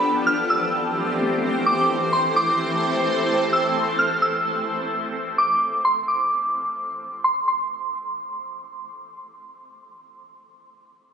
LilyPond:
<<
  \new Staff \with { instrumentName = "Synth bell" } { \time 4/4 \key a \minor \tempo 4 = 129 r8 f'''8 e'''2~ e'''8 d'''8 | r8 c'''8 d'''2~ d'''8 e'''8 | r8 f'''8 e'''2~ e'''8 d'''8 | r8 c'''8 d'''2~ d'''8 c'''8 |
c'''2. r4 | r1 | }
  \new Staff \with { instrumentName = "Ambient pad" } { \time 4/4 \key a \minor << { <e a c' c''>1~ | <e a c' c''>1 | r1 | r1 |
r1 | r1 | } \\ { g'1 | a'1 | r1 | r1 |
r1 | r1 | } >> }
>>